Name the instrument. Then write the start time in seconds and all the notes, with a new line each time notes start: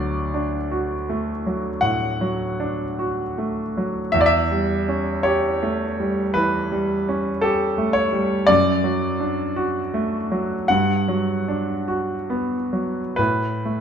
grand piano
Already playing: D2 F#3 D5
0.34 D4
0.71 F#4
1.09 A3
1.46 F#3
1.81 A2 F#5
2.21 F#3
2.60 D4
2.99 F#4
3.38 A3
3.77 F#3
4.12 E2 E5
4.21 D5
4.26 E5
4.51 G3
4.88 C#4
5.23 G4 C#5
5.63 A3
6.00 G3
6.34 E3 B4
6.72 G3
7.09 C#4
7.41 G4 A4
7.78 A3
7.93 C#5
8.13 G3
8.47 F#2 D5
8.84 F#3
9.20 D4
9.56 F#4
9.94 A3
10.32 F#3
10.68 G2 F#5
11.08 F#3
11.48 D4
11.88 F#4
12.30 B3
12.73 F#3
13.16 A2 B4
13.65 A3